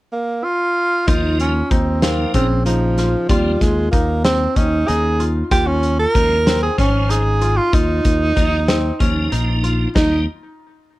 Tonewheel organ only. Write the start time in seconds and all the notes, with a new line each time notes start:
1.07 F3 A#3 D#4
2.02 F3 A#3 D#4
3.29 F3 A#3 C4
6.14 F3 G#3 C#4
6.78 F3 G#3 C5
8.36 F3 A#3 D#4
9.00 F3 A#3 D#4
9.96 G3 A#3 D#4